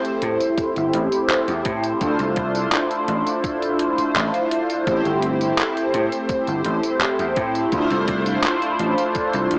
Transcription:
Already playing: A3 C4 E4 G4 C5
0.05 closed hi-hat, tambourine
0.22 A2, closed hi-hat
0.40 closed hi-hat, tambourine
0.58 muted slap bass stroke, kick, closed hi-hat, tambourine
0.76 G1, closed hi-hat, tambourine
0.94 A1, closed hi-hat
1.12 closed hi-hat, tambourine
1.29 clap, closed hi-hat, tambourine
1.48 E2, closed hi-hat, tambourine
1.65 A2, kick, closed hi-hat
1.83 closed hi-hat, tambourine
2.01 D2 A3 D4 E4 F4 C5, kick, closed hi-hat, tambourine
2.19 C2, closed hi-hat, tambourine
2.36 kick, closed hi-hat
2.54 A3 D4 E4 F4 C5, closed hi-hat, tambourine
2.72 clap, closed hi-hat, tambourine
2.91 closed hi-hat, tambourine
3.08 A1, closed hi-hat
3.27 closed hi-hat, tambourine
3.44 kick, closed hi-hat, tambourine
3.62 closed hi-hat, tambourine
3.79 closed hi-hat
3.98 muted slap bass stroke, closed hi-hat, tambourine
4.15 A1, clap, closed hi-hat, tambourine
4.34 closed hi-hat, tambourine
4.51 closed hi-hat
4.69 closed hi-hat, tambourine
4.86 A1 A3 C4 E4 G4 C5, kick, closed hi-hat, tambourine
5.05 G1, closed hi-hat, tambourine
5.22 closed hi-hat
5.39 A3 C4 E4 G4 C5, closed hi-hat, tambourine
5.58 clap, closed hi-hat, tambourine
5.77 closed hi-hat, tambourine
5.94 A2, closed hi-hat
6.12 closed hi-hat, tambourine
6.29 muted slap bass stroke, kick, closed hi-hat, tambourine
6.48 G1, closed hi-hat, tambourine
6.65 A1, closed hi-hat
6.84 closed hi-hat, tambourine
7.01 clap, closed hi-hat, tambourine
7.19 E2, closed hi-hat, tambourine
7.36 A2, kick, closed hi-hat
7.55 closed hi-hat, tambourine
7.72 D2 A3 D4 E4 F4 C5, kick, closed hi-hat, tambourine
7.90 C2, closed hi-hat, tambourine
8.08 kick, closed hi-hat
8.25 A3 D4 E4 F4 C5, closed hi-hat, tambourine
8.44 clap, closed hi-hat, tambourine
8.62 closed hi-hat, tambourine
8.79 A1, closed hi-hat
8.98 closed hi-hat, tambourine
9.15 kick, closed hi-hat, tambourine
9.33 C2, closed hi-hat, tambourine
9.51 D2, closed hi-hat

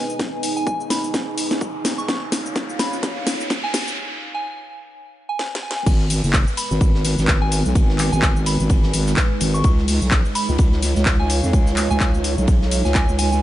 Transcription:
Already playing: B3 D#4 G#4 B4 D#5 G#5, riser
0.10 shaker
0.19 kick, snare, shaker
0.43 open hi-hat, shaker
0.57 G#5, shaker
0.67 G#5, kick, shaker
0.80 shaker
0.90 B5, snare, open hi-hat, shaker
1.04 shaker
1.14 kick, snare, shaker
1.38 open hi-hat, shaker
1.51 snare, shaker
1.61 kick, shaker
1.85 snare, open hi-hat, shaker
1.98 C#6, shaker
2.08 C#4 F4 C#6, kick, snare, shaker
2.26 C#5 F5
2.32 snare, open hi-hat, shaker
2.46 shaker
2.56 kick, snare, shaker
2.69 shaker
2.79 B5, snare, open hi-hat, shaker
2.93 shaker
3.03 kick, snare, shaker
3.27 snare, open hi-hat, shaker
3.40 shaker
3.50 kick, snare, shaker
3.64 G#5
3.74 snare, open hi-hat, shaker
3.88 shaker
4.34 G#5
5.29 G#5
5.39 G#5, snare
5.55 snare
5.63 G#5
5.71 snare
5.76 G#5
5.86 G#1 G#3 B3 D#4 B4, kick, crash, ride, shaker
6.00 B4, snare
6.10 open hi-hat, shaker
6.23 F#1, shaker
6.33 kick, snare, clap, ride, shaker
6.47 shaker
6.57 B5, open hi-hat, ride, shaker
6.71 G#1 G#5, shaker
6.81 G#1, kick, ride, shaker
6.95 snare
7.05 snare, open hi-hat, ride, shaker
7.18 G#1, snare, shaker
7.28 kick, snare, clap, ride, shaker
7.42 G#5
7.52 snare, open hi-hat, ride, shaker
7.65 B1, shaker
7.75 G#1, kick, ride, shaker
7.89 snare
7.98 clap, open hi-hat, ride, shaker
8.12 G#1 G#5, shaker
8.22 G#5, kick, snare, clap, ride, shaker
8.36 shaker
8.46 B5, open hi-hat, ride, shaker
8.60 G#1, shaker
8.69 kick, ride, shaker
8.83 snare
8.93 G#1, open hi-hat, ride, shaker
9.06 snare, shaker
9.17 kick, snare, clap, ride, shaker
9.41 G#1, open hi-hat, ride, shaker
9.54 C#6, shaker
9.64 C#2 D#4 F4 C#5 C#6, kick, ride, shaker
9.78 snare
9.88 open hi-hat, shaker
10.01 B1, shaker
10.11 kick, snare, clap, ride, shaker
10.25 shaker
10.35 C#5 B5, open hi-hat, ride, shaker
10.49 C#2, shaker
10.58 C#2, kick, ride, shaker
10.72 snare
10.76 F5
10.82 snare, open hi-hat, ride, shaker
10.96 C#2, snare, shaker
11.06 kick, snare, clap, ride, shaker
11.20 G#5
11.29 snare, open hi-hat, ride, shaker
11.43 F2, shaker
11.53 C#2, kick, ride, shaker
11.66 snare, shaker
11.76 clap, open hi-hat, ride, shaker
11.90 C#2 G#5, shaker
12.00 kick, snare, clap, ride, shaker
12.14 shaker
12.24 open hi-hat, ride, shaker
12.38 B1, shaker
12.48 kick, ride, shaker
12.62 snare
12.71 open hi-hat, ride, shaker
12.85 C#2 G#5, snare, shaker
12.95 G#5, kick, snare, clap, ride, shaker
13.09 C#2, shaker
13.19 G#5, open hi-hat, ride, shaker
13.32 G#5, shaker

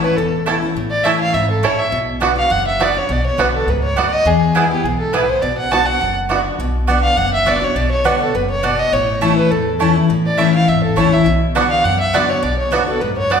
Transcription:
Already playing: A2
0.03 C#4 E4 B4
0.17 E1 E2 A4
0.46 E3 A3 C#4 E4 A4 C#5 A5
0.62 C#4 E4
0.75 A1 A2
0.90 D5
1.04 E3 A3 C#4 E4 A4 C#5 E5 A5
1.20 F5
1.34 G#1 G#2 E5
1.50 A4
1.63 A1 A2 A3 C#4 E4 A4 C#5 A5
1.79 E5
1.92 B1 B2
2.20 D3 B3 D4 F#4 D5 F#5
2.36 D4 F#4 F5
2.50 F#1 F#2 F#5
2.67 E5
2.79 D3 B3 D4 F#4 D5 F#5
2.94 D4 F#4 C#5
3.09 B1 B2 D5
3.26 C#5
3.37 B1 D3 B3 D4 F#4 B4 D5 F#5
3.55 A4
3.67 C#2 G#2 B4
3.84 C#5
3.96 D2 F#2 B3 F#4 D5 F#5
4.13 D#5
4.25 E2 G#4
4.55 E3 G#3 B3 E4 G#4 B4 G#5
4.70 B3 E4 G4
4.84 B1 G#2 G#4
4.99 A4
5.13 A2 B3 E4 G#4 B4 G#5
5.29 C5
5.42 B1 B2 D5
5.58 F#5
5.71 D3 B3 D4 F#4 D5 F#5 A5
5.86 D4 F#4 F#5
6.01 F#1 F#2
6.29 D3 B3 D4 F#4 D5 F#5
6.59 B1 B2
6.87 D3 B3 D4 F#4 D5 F#5
7.03 F5
7.17 F#1 F#2 F#5
7.34 E5
7.45 D3 B3 D4 F#4 D5 F#5
7.61 D4 F#4 C#5
7.75 B1 B2 D5
7.91 C#5
8.04 D3 B3 D4 F#4 B4 D5 F#5
8.20 D4 F#4 A4
8.35 F#1 F#2 B4
8.50 C#5
8.63 B2 B3 F#4 D5 F#5
8.79 D#5
8.92 A1 A2 C#5
9.21 E3 A3 C#4 E4 C#5 A5
9.38 B4
9.51 E2 A4
9.79 E3 A3 C#4 E4 C#5 A5
9.95 C#4 E4
10.09 A1 A2
10.26 D5
10.37 E3 A3 C#4 E4 C#5 E5 A5
10.54 C#4 E4 F5
10.68 G#1 E2 E5
10.83 A4
10.96 A1 E3 A3 C#4 E4 C#5 A5
11.12 C#4 E4 E5
11.26 B1 B2
11.55 D3 B3 D4 F#4 D5 F#5
11.70 F5
11.84 F#2 F#5
12.00 E5
12.13 D3 B3 D4 F#4 D5 F#5
12.29 D4 F#4 C#5
12.43 B1 B2 D5
12.59 C#5
12.71 D3 B3 D4 F#4 B4 D5 F#5
12.87 D4 F#4 A4
13.01 F#2 G#2 B4
13.18 C#5
13.30 F#2 B3 F#4 D5 F#5

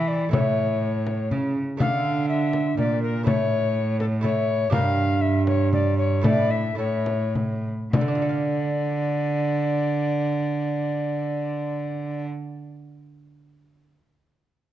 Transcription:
Already playing: E3 A#3 E4 G4
0.08 D5
0.29 A3 E4 A4 C#5
0.33 A2, frame drum
1.07 frame drum
1.31 C#3, frame drum
1.77 D3 A3 D4 A4 F5, frame drum
2.28 E5
2.53 frame drum
2.77 A#2 D5, frame drum
3.02 A#4
3.23 A2 A3 E4 A4 C#5, frame drum
3.28 A2
3.99 A4, frame drum
4.21 A3 E4 A4 C#5, frame drum
4.70 G2 D4 A#4 F5, frame drum
4.74 G2
5.21 E5
5.46 C#5, frame drum
5.72 D5, frame drum
5.98 C#5
6.21 A2 A3 E4 A4 D5, frame drum
6.51 E5
6.75 A2 A3 E4 A4 C#5
6.79 A2
7.06 frame drum
7.35 frame drum
7.93 D3 D5, frame drum
8.01 A3
8.08 D4
8.15 F4
8.22 A4
8.29 F5

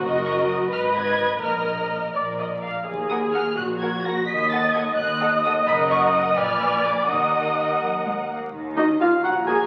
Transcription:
Already playing: F#4
0.01 F#1 F#2 A#4 D#5
0.25 C#6
0.48 D#6
0.71 G#1 G#2 B4 D#5 F6
0.96 G#6
1.42 A#1 A#2 A#4 D#5 F6
2.14 A#1 A#2 A#4 D5
2.39 D#5
2.62 F5
2.86 D#2 G#4
3.09 A#4 F#5 D#6
3.33 A#4 F#5 F6
3.57 A#1 A#2 F#4 F#6
3.81 A#4 F#5 G#6
4.04 A#4 F#5 A#6
4.27 D#2 D#5 B6
4.51 A4 F#5 A6
4.74 A4 F#5 G#6
4.97 D#2 D#5 F#6
5.21 A4 F#5
5.43 A4 F#5 D#6
5.67 F#1 F#2 A#4 F#5 B5
5.90 C#6
6.14 D#6
6.37 A#1 A#2 B4 D5 G#5 F6
6.86 D6
7.09 D#2 D#3 A#4 D#5 F#5 D#6
7.81 F#3
8.05 G#3
8.29 A#3
8.53 D#2 D#3
8.76 A#3 D#4 F#4 D#5
9.00 A#3 F4 F#4 F5
9.23 A#1 A#2 F#4 F#5 A#5
9.47 A#3 F#4 G#4 G#5

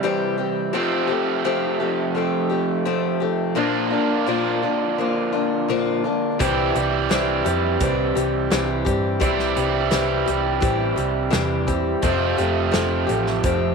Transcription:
Already playing: C3 E3 G3 C4 E4
0.03 C3 E3 G3 C4 G4
0.38 G3 C4 G4
0.73 F2 C3 F3 A3 C4 F4 G4
1.07 A3 C4 G4
1.44 F3 A3 C4 G4
1.80 A3 C4 G4
2.15 F3 A3 C4 G4
2.49 A3 C4 G4
2.85 F3 A3 C4 G4
3.20 A3 C4 G4
3.55 A#2 D3 F3 A#3 D4 F4
3.90 A#3 D4 F4
4.26 A#2 F3 A#3 D4 F4
4.63 A#3 D4 F4
4.98 F3 A#3 D4 F4
5.32 A#3 D4 F4
5.68 A#2 F3 A#3 D4 F4
6.04 A#3 D4 F4
6.39 C2 C3 E3 G3 C4 E4 G4, kick, closed hi-hat
6.75 C2 G3 C4 G4, closed hi-hat
7.09 C2 C3 E3 G3 C4 G4, snare, closed hi-hat
7.45 F2 G3 C4 G4, closed hi-hat
7.80 C2 E3 G3 C4 G4, kick, closed hi-hat
8.15 C2 G3 C4 G4, closed hi-hat
8.50 C2 C3 E3 G3 C4 G4, snare, closed hi-hat
8.85 G2 G3 C4 G4, kick, closed hi-hat
9.20 C2 C3 E3 G3 C4 G4, kick, closed hi-hat
9.24 E4
9.39 snare
9.56 C2 G3 C4 G4, closed hi-hat
9.91 C2 C3 E3 G3 C4 G4, snare, closed hi-hat
10.26 C2 G3 C4 G4, closed hi-hat
10.61 A1 E3 G3 C4 G4, kick, closed hi-hat
10.96 C2 G3 C4 G4, closed hi-hat
11.30 E2 C3 E3 G3 C4 G4, snare, closed hi-hat
11.67 G3 C4 G4, kick, closed hi-hat
12.02 F1 F2 C3 F3 A3 C4 F4 G4, kick, closed hi-hat
12.37 F1 A3 C4 G4, closed hi-hat
12.71 F1 F3 A3 C4 G4, snare, closed hi-hat
13.07 A1 A3 C4 G4, closed hi-hat
13.27 snare
13.43 F1 F3 A3 C4 G4, kick, closed hi-hat

